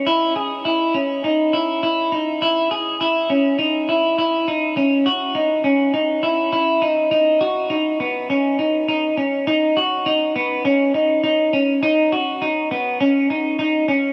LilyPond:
\new Staff \with { instrumentName = "Clean electric guitar" } { \time 4/4 \key b \mixolydian \tempo 4 = 102 e'8 gis'8 e'8 cis'8 dis'8 e'8 e'8 dis'8 | e'8 gis'8 e'8 cis'8 dis'8 e'8 e'8 dis'8 | cis'8 fis'8 dis'8 cis'8 dis'8 e'8 e'8 dis'8 | dis'8 fis'8 dis'8 b8 cis'8 dis'8 dis'8 cis'8 |
dis'8 fis'8 dis'8 b8 cis'8 dis'8 dis'8 cis'8 | dis'8 fis'8 dis'8 b8 cis'8 dis'8 dis'8 cis'8 | }